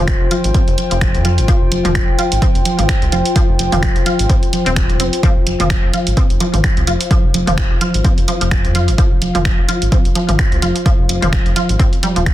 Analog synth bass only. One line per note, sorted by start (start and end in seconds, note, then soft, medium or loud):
0.00 0.14 F1 medium
0.21 0.28 F1 medium
0.44 0.52 G#1 medium
0.68 0.75 F1 medium
0.91 1.16 F1 medium
1.15 1.40 F2 medium
1.38 1.46 G1 medium
1.62 1.69 F1 loud
1.72 1.81 F1 medium
1.85 2.01 F1 medium
2.08 2.16 F1 medium
2.32 2.39 G#1 medium
2.55 2.63 F1 medium
2.79 2.86 G#1 loud
3.02 3.10 C2 loud
3.12 3.22 F1 loud
3.49 3.56 F1 loud
3.59 3.69 F1 medium
3.72 3.89 F1 medium
3.96 4.03 F1 medium
4.19 4.27 G#1 medium
4.66 5.01 D#1 loud
5.00 5.09 F1 loud
5.36 5.44 F1 loud
5.47 5.56 F1 medium
5.60 5.76 F1 medium
5.83 5.91 F1 medium
6.07 6.14 G#1 medium
6.30 6.38 F1 medium
6.54 6.61 G#1 loud
6.77 6.85 C2 loud
6.87 6.97 F1 loud
7.24 7.31 F1 loud
7.34 7.44 F1 medium
7.47 7.64 F1 medium
7.71 7.78 F1 medium
7.94 8.02 G#1 medium
8.18 8.25 F1 loud
8.41 8.66 F1 medium
8.65 8.90 F2 medium
8.88 8.96 G1 medium
9.11 9.19 F1 loud
9.22 9.31 F1 medium
9.35 9.51 F1 medium
9.58 9.66 F1 medium
9.82 9.89 G#1 medium
10.05 10.13 F1 loud
10.29 10.36 G#1 loud
10.52 10.60 C2 medium
10.62 10.72 F1 loud
10.99 11.06 F1 loud
11.09 11.19 F1 medium
11.22 11.39 F1 medium
11.46 11.53 F1 medium
11.69 11.77 G#1 medium
12.16 12.34 D#1 loud